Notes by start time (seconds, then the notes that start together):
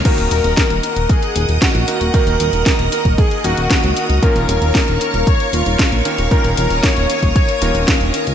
0.05 D#3 A#3 D#4 F#4 A#4 D#5 F#5 D#6, kick, closed hi-hat, crash
0.18 D#1, closed hi-hat
0.31 D#1 A#4, closed hi-hat
0.44 D#1, closed hi-hat
0.57 kick, snare, closed hi-hat
0.70 D#1, closed hi-hat
0.83 closed hi-hat
0.96 D#1, closed hi-hat
1.09 G#4, kick, closed hi-hat
1.23 closed hi-hat
1.36 D#1, closed hi-hat
1.49 D#1, closed hi-hat
1.62 F#4, kick, snare, closed hi-hat
1.75 A#1, closed hi-hat
1.88 D#3 A#3 D#4 F#4 A#4, closed hi-hat
2.01 D#1, closed hi-hat
2.14 D#3 A#3 D#4 F#4 A#4, kick, closed hi-hat
2.27 D#1, closed hi-hat
2.40 D#1, closed hi-hat
2.53 D#1, closed hi-hat
2.66 kick, snare, closed hi-hat
2.79 D#1, closed hi-hat
2.92 A#4, closed hi-hat
3.05 D#1, kick, closed hi-hat
3.18 G#4, kick, closed hi-hat
3.31 closed hi-hat
3.44 D#1 D#3 A#3 D#4 F#4 A#4, closed hi-hat
3.57 D#1, closed hi-hat
3.70 kick, snare, closed hi-hat
3.84 C#2, closed hi-hat
3.97 F#4, closed hi-hat
4.10 C#2, closed hi-hat
4.23 D#3 A#3 C#4 F4 A#4 C#5 F5 C#6, kick, closed hi-hat
4.36 D#1, closed hi-hat
4.49 D#1, closed hi-hat
4.62 D#1, closed hi-hat
4.75 kick, snare, closed hi-hat
4.88 D#1, closed hi-hat
5.01 A#4, closed hi-hat
5.14 D#1, closed hi-hat
5.27 C#5, kick, closed hi-hat
5.40 closed hi-hat
5.53 D#1 F4, closed hi-hat
5.66 D#1, closed hi-hat
5.79 kick, snare, closed hi-hat
5.92 A#1, closed hi-hat
6.05 D#3 A#3 C#4 F4 A#4, closed hi-hat
6.18 D#1, closed hi-hat
6.31 D#3 A#3 C#4 F4 A#4 D#6, kick, closed hi-hat
6.44 D#1, closed hi-hat
6.57 D#1 A#4, closed hi-hat
6.70 D#1, closed hi-hat
6.83 C#5, kick, snare, closed hi-hat
6.97 D#1, closed hi-hat
7.10 closed hi-hat
7.23 D#1, kick, closed hi-hat
7.36 C#5, kick, closed hi-hat
7.49 closed hi-hat
7.62 D#1 D#3 A#3 C#4 F4 A#4, closed hi-hat
7.75 D#1, closed hi-hat
7.88 kick, snare, closed hi-hat
8.01 D#1, closed hi-hat
8.14 closed hi-hat
8.27 C#2, closed hi-hat